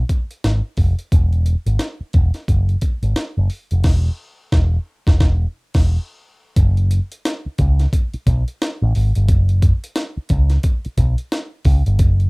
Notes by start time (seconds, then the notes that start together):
0.09 kick, closed hi-hat
0.31 closed hi-hat
0.44 G#1, snare, closed hi-hat
0.77 F1, kick, open hi-hat
0.99 closed hi-hat
1.12 E1, kick, closed hi-hat
1.33 closed hi-hat
1.46 closed hi-hat
1.66 G#1, closed hi-hat
1.79 snare, closed hi-hat
2.00 muted picked electric bass stroke
2.13 E1, kick, closed hi-hat
2.34 snare, closed hi-hat
2.48 F#1, kick, closed hi-hat
2.69 closed hi-hat
2.81 kick, closed hi-hat
3.03 G#1, closed hi-hat
3.16 snare, closed hi-hat
3.37 F#1
3.50 open hi-hat
3.71 F1, closed hi-hat
3.84 E1, kick, snare, crash
4.52 E1, kick, snare
5.07 E1, kick, snare
5.20 E1, kick, snare
5.74 E1, kick, snare, crash
6.56 F#1, kick, closed hi-hat
6.77 closed hi-hat
6.91 closed hi-hat
7.12 closed hi-hat
7.25 snare, closed hi-hat
7.46 muted picked electric bass stroke
7.58 C#2, kick, closed hi-hat
7.79 snare, closed hi-hat
7.93 kick, closed hi-hat
8.14 muted picked electric bass stroke, closed hi-hat
8.27 B1, kick, closed hi-hat
8.48 closed hi-hat
8.62 snare, closed hi-hat
8.82 A1
8.95 G#1, open hi-hat
9.15 G1, closed hi-hat
9.28 F#1, kick, closed hi-hat
9.49 closed hi-hat
9.62 kick, closed hi-hat
9.84 closed hi-hat
9.96 snare, closed hi-hat
10.17 muted picked electric bass stroke
10.29 C#2, kick, closed hi-hat
10.50 snare, closed hi-hat
10.63 kick, closed hi-hat
10.85 muted picked electric bass stroke, closed hi-hat
10.98 B1, kick, closed hi-hat
11.18 closed hi-hat
11.32 snare, closed hi-hat
11.65 C#2, kick, open hi-hat
11.86 G1, closed hi-hat
11.99 F#1, kick, closed hi-hat
12.20 closed hi-hat